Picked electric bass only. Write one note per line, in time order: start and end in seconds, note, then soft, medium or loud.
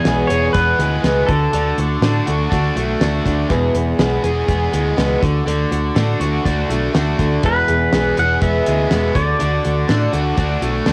0.06 0.23 B1 medium
0.30 0.48 E1 medium
0.55 0.73 E1 medium
0.79 0.97 D2 medium
1.04 1.22 C#2 medium
1.29 1.47 D2 medium
1.54 1.72 D2 medium
1.78 1.96 D2 medium
2.02 2.20 A2 medium
2.28 2.46 D2 medium
2.52 2.70 D2 medium
2.76 2.94 B1 medium
3.01 3.19 D2 medium
3.25 3.43 D2 medium
3.51 3.68 E1 medium
3.74 3.92 E1 medium
3.99 4.17 B1 medium
4.24 4.42 E1 medium
4.49 4.67 E1 medium
4.74 4.91 D2 medium
4.98 5.16 C#2 medium
5.23 5.40 D2 medium
5.46 5.64 D2 medium
5.72 5.89 D2 medium
5.96 6.14 A2 medium
6.20 6.38 D2 medium
6.45 6.63 D2 medium
6.70 6.88 B1 medium
6.95 7.13 D2 medium
7.19 7.37 D2 medium
7.44 7.61 E1 medium
7.69 7.86 E1 medium
7.93 8.11 B1 medium
8.18 8.35 E1 medium
8.42 8.60 E1 medium
8.68 8.85 D2 medium
8.92 9.09 E1 medium
9.15 9.33 D2 medium
9.42 9.59 D2 medium
9.66 9.83 D2 medium
9.89 10.07 A2 medium
10.13 10.31 D2 medium
10.38 10.56 D2 medium
10.61 10.80 B1 medium
10.86 10.93 D2 medium